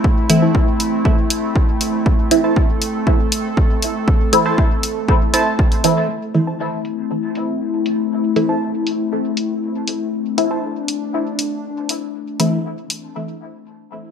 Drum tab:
HH |--o---o---o---o-|--o---o---o---o-|--o---o---o--oo-|--o---o---o---o-|
BD |o---o---o---o---|o---o---o---o---|o---o---o---o---|----------------|

HH |--o---o---o---o-|--o---o---o---o-|--o---o---------|
BD |----------------|----------------|----------------|